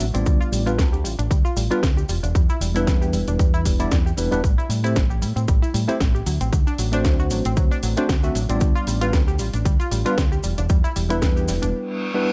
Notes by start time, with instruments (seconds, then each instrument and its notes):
0.00 fingered electric bass A1, open hi-hat, cabasa
0.14 fingered electric bass A1, tine electric piano G3 B3 D4 F4 D5, synth arpeggio sound C4, closed hi-hat, cabasa
0.26 fingered electric bass D2, synth arpeggio sound G3, kick, closed hi-hat, cabasa
0.41 synth arpeggio sound F4, cabasa
0.52 fingered electric bass A1, synth arpeggio sound G3, open hi-hat, cabasa
0.66 tine electric piano G3 B3 D4 F4 B4, synth arpeggio sound F4, closed hi-hat, cabasa
0.78 fingered electric bass D2, synth arpeggio sound G3, kick, snare, closed hi-hat, cabasa
0.93 synth arpeggio sound G4, cabasa
1.04 fingered electric bass A1, synth arpeggio sound G3, open hi-hat, cabasa
1.19 fingered electric bass A1, synth arpeggio sound D4, closed hi-hat, cabasa
1.30 fingered electric bass D2, synth arpeggio sound G3, kick, closed hi-hat, cabasa
1.45 synth arpeggio sound F4, cabasa
1.57 fingered electric bass A1, synth arpeggio sound G3, open hi-hat, cabasa
1.70 tine electric piano G3 B3 D4 F4 B4, synth arpeggio sound F4, closed hi-hat, cabasa
1.83 fingered electric bass D2, synth arpeggio sound G3, kick, snare, closed hi-hat, cabasa
1.97 synth arpeggio sound G4, cabasa
2.09 fingered electric bass E1, synth arpeggio sound G3, open hi-hat, cabasa
2.23 fingered electric bass E1, synth arpeggio sound D4, closed hi-hat, cabasa
2.35 fingered electric bass E2, synth arpeggio sound G3, kick, closed hi-hat, cabasa
2.49 synth arpeggio sound E4, cabasa
2.60 fingered electric bass E1, synth arpeggio sound G3, open hi-hat, cabasa
2.75 tine electric piano G3 B3 D4 E4 B4, synth arpeggio sound E4, closed hi-hat, cabasa
2.87 fingered electric bass E2, synth arpeggio sound G3, kick, snare, closed hi-hat, cabasa
3.02 synth arpeggio sound G4, cabasa
3.13 fingered electric bass E1, synth arpeggio sound G3, open hi-hat, cabasa
3.27 fingered electric bass E1, synth arpeggio sound D4, closed hi-hat, cabasa
3.39 fingered electric bass E2, synth arpeggio sound G3, kick, closed hi-hat, cabasa
3.54 synth arpeggio sound E4, cabasa
3.65 fingered electric bass E1, synth arpeggio sound G3, kick, open hi-hat, cabasa
3.79 tine electric piano G3 B3 D4 E4 D5, synth arpeggio sound E4, closed hi-hat, cabasa
3.91 fingered electric bass E2, synth arpeggio sound G3, kick, snare, closed hi-hat, cabasa
4.06 synth arpeggio sound G4, cabasa
4.17 fingered electric bass E1, tine electric piano G3 B3 D4 E4 B4, synth arpeggio sound G3, open hi-hat, cabasa
4.31 fingered electric bass E1, tine electric piano G3 B3 D4 E4 B4, synth arpeggio sound D4, closed hi-hat, cabasa
4.44 fingered electric bass A1, synth arpeggio sound G3, kick, closed hi-hat, cabasa
4.58 synth arpeggio sound E4, cabasa
4.69 fingered electric bass A2, synth arpeggio sound G3, open hi-hat, cabasa
4.84 tine electric piano A3 C4 E4 G4 C5, synth arpeggio sound E4, closed hi-hat, cabasa
4.96 fingered electric bass A1, synth arpeggio sound G3, kick, snare, closed hi-hat, cabasa
5.10 synth arpeggio sound G4, cabasa
5.21 fingered electric bass A2, synth arpeggio sound G3, open hi-hat, cabasa
5.36 fingered electric bass A2, synth arpeggio sound C4, closed hi-hat, cabasa
5.48 fingered electric bass A1, synth arpeggio sound G3, kick, closed hi-hat, cabasa
5.62 synth arpeggio sound E4, cabasa
5.74 fingered electric bass A2, synth arpeggio sound G3, open hi-hat, cabasa
5.88 tine electric piano A3 C4 E4 G4 C5, synth arpeggio sound E4, muted fingered electric bass stroke, closed hi-hat, cabasa
6.00 fingered electric bass A1, synth arpeggio sound G3, kick, snare, closed hi-hat, cabasa
6.15 synth arpeggio sound G4, cabasa
6.26 fingered electric bass D2, synth arpeggio sound F#3, open hi-hat, cabasa
6.41 fingered electric bass A1, synth arpeggio sound C4, closed hi-hat, cabasa
6.53 fingered electric bass D2, synth arpeggio sound F#3, kick, closed hi-hat, cabasa
6.67 synth arpeggio sound D4, cabasa
6.78 fingered electric bass A1, synth arpeggio sound F#3, open hi-hat, cabasa
6.92 tine electric piano A3 C4 D4 F#4 C5, synth arpeggio sound D4, closed hi-hat, cabasa
7.05 fingered electric bass D2, synth arpeggio sound F#3, kick, snare, closed hi-hat, cabasa
7.20 synth arpeggio sound F#4, cabasa
7.30 fingered electric bass A1, synth arpeggio sound F#3, open hi-hat, cabasa
7.45 fingered electric bass A1, synth arpeggio sound C4, closed hi-hat, cabasa
7.57 fingered electric bass D2, synth arpeggio sound F#3, kick, closed hi-hat, cabasa
7.71 synth arpeggio sound D4, cabasa
7.83 fingered electric bass A1, synth arpeggio sound F#3, open hi-hat, cabasa
7.97 tine electric piano A3 C4 D4 F#4 C5, synth arpeggio sound D4, closed hi-hat, cabasa
8.09 fingered electric bass D2, synth arpeggio sound F#3, kick, snare, closed hi-hat, cabasa
8.23 tine electric piano A3 C4 D4 F#4 E5, synth arpeggio sound F#4, cabasa
8.35 fingered electric bass A1, synth arpeggio sound F#3, open hi-hat, cabasa
8.49 fingered electric bass A1, tine electric piano G3 B3 D4 F4 D5, synth arpeggio sound C4, closed hi-hat, cabasa
8.60 fingered electric bass D2, synth arpeggio sound G3, kick, closed hi-hat, cabasa
8.76 synth arpeggio sound F4, cabasa
8.87 fingered electric bass A1, synth arpeggio sound G3, open hi-hat, cabasa
9.01 tine electric piano G3 B3 D4 F4 B4, synth arpeggio sound F4, closed hi-hat, cabasa
9.13 fingered electric bass D2, synth arpeggio sound G3, kick, snare, closed hi-hat, cabasa
9.28 synth arpeggio sound G4, cabasa
9.39 fingered electric bass A1, synth arpeggio sound G3, open hi-hat, cabasa
9.54 fingered electric bass A1, synth arpeggio sound D4, closed hi-hat, cabasa
9.65 fingered electric bass D2, synth arpeggio sound G3, kick, closed hi-hat, cabasa
9.80 synth arpeggio sound F4, cabasa
9.91 fingered electric bass A1, synth arpeggio sound G3, open hi-hat, cabasa
10.05 tine electric piano G3 B3 D4 F4 B4, synth arpeggio sound F4, closed hi-hat, cabasa
10.17 fingered electric bass D2, synth arpeggio sound G3, kick, snare, closed hi-hat, cabasa
10.32 synth arpeggio sound G4, cabasa
10.43 fingered electric bass E1, synth arpeggio sound G3, open hi-hat, cabasa
10.58 fingered electric bass E1, synth arpeggio sound D4, closed hi-hat, cabasa
10.69 fingered electric bass E2, synth arpeggio sound G3, kick, closed hi-hat, cabasa
10.84 synth arpeggio sound E4, cabasa
10.96 fingered electric bass E1, synth arpeggio sound G3, open hi-hat, cabasa
11.09 tine electric piano G3 B3 D4 E4 B4, synth arpeggio sound E4, closed hi-hat, cabasa
11.22 fingered electric bass E2, synth arpeggio sound G3, kick, snare, closed hi-hat, cabasa
11.37 synth arpeggio sound G4, cabasa
11.48 fingered electric bass E1, synth arpeggio sound G3, snare, open hi-hat, cabasa
11.62 fingered electric bass E1, synth arpeggio sound D4, closed hi-hat, cabasa
11.74 reverse cymbal
12.14 tine electric piano G3 B3 D4 E4 B4